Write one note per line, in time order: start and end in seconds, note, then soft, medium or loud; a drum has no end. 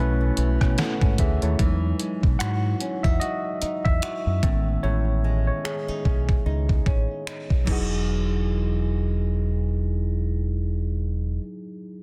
0.00 0.30 B1 loud
0.00 1.68 B2 medium
0.00 0.37 E3 medium
0.00 0.97 A3 medium
0.00 0.20 B3 medium
0.00 0.60 C#4 medium
0.00 0.97 C#4 medium
0.00 0.78 E4 medium
0.00 0.79 B4 loud
0.21 0.77 A3 medium
0.37 0.57 B1 loud
0.37 1.18 E3 medium
0.37 closed hi-hat medium
0.61 0.75 B2 loud
0.61 1.01 C#4 medium
0.61 kick medium
0.61 cross-stick medium
0.78 1.41 A3 medium
0.78 1.96 B3 soft
0.78 1.17 A4 medium
0.78 1.17 F#5 medium
0.78 snare loud
0.78 closed hi-hat medium
1.01 1.15 G#2 loud
1.01 1.69 C#4 medium
1.01 kick medium
1.18 1.38 D2 loud
1.18 1.59 E3 medium
1.18 1.42 G#4 medium
1.18 1.41 E5 medium
1.18 kick medium
1.18 closed hi-hat medium
1.42 1.56 D#2 medium
1.42 1.68 A3 medium
1.42 1.81 E4 medium
1.42 1.81 C#5 medium
1.42 closed hi-hat soft
1.59 1.92 E2 loud
1.59 5.09 E3 medium
1.59 2.15 F#3 medium
1.59 2.16 G#3 soft
1.59 2.16 D#4 medium
1.59 kick medium
1.59 closed hi-hat medium
2.00 4.87 G#3 medium
2.00 closed hi-hat medium
2.23 2.37 B2 medium
2.23 kick medium
2.39 2.73 G#2 medium
2.39 3.20 F#4 medium
2.39 3.00 F#5 loud
2.39 finger snap loud
2.39 closed hi-hat medium
2.81 3.04 C#4 medium
2.81 closed hi-hat medium
3.03 3.18 E2 medium
3.03 3.61 D#4 medium
3.03 3.11 E5 medium
3.03 kick medium
3.20 4.01 F#4 medium
3.20 3.87 D#5 medium
3.20 closed hi-hat medium
3.62 4.87 D#4 medium
3.62 muted fingered electric bass stroke soft
3.62 closed hi-hat medium
3.85 3.99 E2 medium
3.85 4.86 E5 medium
3.85 kick medium
4.02 4.52 F#4 medium
4.02 finger snap loud
4.02 closed hi-hat medium
4.27 4.40 F#2 medium
4.43 4.76 A1 loud
4.43 4.82 A2 medium
4.43 5.00 D#3 medium
4.43 4.99 G#3 medium
4.43 5.00 B3 soft
4.43 5.00 C#4 soft
4.43 kick loud
4.43 closed hi-hat medium
4.83 5.49 A1 loud
4.83 7.67 A2 medium
4.83 5.46 C#5 medium
5.24 7.68 G#3 medium
5.47 5.65 C#5 medium
5.64 5.88 C#4 medium
5.64 6.82 G#4 medium
5.64 finger snap loud
5.88 6.45 D#4 medium
5.88 muted fingered electric bass stroke soft
6.05 6.38 B1 medium
6.05 6.85 C#4 medium
6.05 kick medium
6.29 kick medium
6.46 6.78 C#2 medium
6.46 7.27 D#4 medium
6.69 kick medium
6.86 7.05 A1 medium
6.86 7.67 C#4 medium
6.86 kick medium
7.27 7.69 D#4 medium
7.27 finger snap loud
7.50 7.67 B1 medium
7.50 kick medium
7.65 11.38 E1 medium
7.65 11.40 E3 medium
7.65 11.35 F#3 medium
7.65 11.43 G#3 medium
7.65 11.38 D#4 medium
7.65 kick medium
7.65 crash medium
7.69 11.45 D#4 medium
7.69 11.40 E4 medium
7.69 11.47 F#4 medium
7.69 11.42 G#4 medium